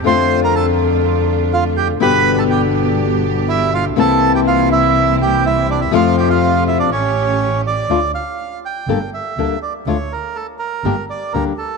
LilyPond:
<<
  \new Staff \with { instrumentName = "Bandoneon" } { \time 4/4 \key f \major \tempo 4 = 122 <c'' c'''>8. <bes' bes''>16 <a' a''>8 r4. <f' f''>8 <g' g''>8 | <b' b''>8. <a' a''>16 <g' g''>8 r4. <e' e''>8 <f' f''>8 | <a' a''>8. <g' g''>16 <f' f''>8 <e' e''>4 <g' g''>8 <e' e''>8 <d' d''>16 <e' e''>16 | <f' f''>8 <g' g''>16 <f' f''>8. <e' e''>16 <d' d''>16 <cis' cis''>4. d''8~ |
\key d \minor d''8 f''4 g''4 e''4 d''8 | cis''8 bes'8 a'8 bes'4 d''8 bes'8 a'8 | }
  \new Staff \with { instrumentName = "String section" } { \time 4/4 \key f \major <a d' f'>1 | <b d' g'>1 | <bes c' e'>1 | <a c' f'>2 <a cis' g'>2 |
\key d \minor r1 | r1 | }
  \new Staff \with { instrumentName = "Nylon-string guitar" } { \time 4/4 \key f \major <d a c' f'>1 | <b, d g b g'>1 | <c e bes c' e'>1 | <c f a c' f'>2 r2 |
\key d \minor <d a d' f'>8 r4. <d g bes d' a'>8 r8 <d g bes d' a'>8 r8 | <d a d' f'>8 r4. <d g bes d' g'>8 r8 <d g bes d' g'>8 r8 | }
  \new Staff \with { instrumentName = "Double bass" } { \clef bass \time 4/4 \key f \major f,1 | g,,1 | c,1 | f,2 a,,2 |
\key d \minor d,8 r4. g,,8 r8 d,8 r8 | d,8 r4. g,,8 r8 d,8 r8 | }
>>